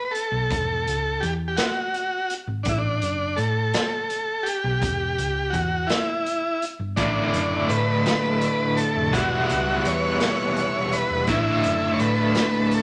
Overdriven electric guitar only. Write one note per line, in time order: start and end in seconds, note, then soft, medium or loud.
6.97 9.10 A2 medium
6.97 9.10 D3 medium
6.97 9.11 A3 medium
6.97 9.11 D4 medium
6.97 9.14 E4 medium
9.12 11.25 E2 medium
9.12 11.25 B2 medium
9.12 11.25 E3 medium
9.12 11.26 G3 loud
9.12 11.26 B3 loud
9.12 11.26 E4 loud
11.28 12.82 A2 loud
11.28 12.82 D3 medium
11.28 12.82 A3 loud
11.28 12.82 D4 loud
11.28 12.82 E4 loud